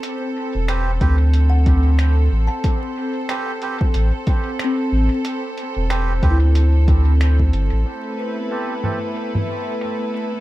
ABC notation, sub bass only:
X:1
M:4/4
L:1/16
Q:"Swing 16ths" 1/4=92
K:Ador
V:1 name="Sub bass" clef=bass
z3 E,,,3 D,,8 A,,, z | z8 A,,, z4 z A,,, z | z3 E,,,3 D,,8 G,,, A,,, | z16 |]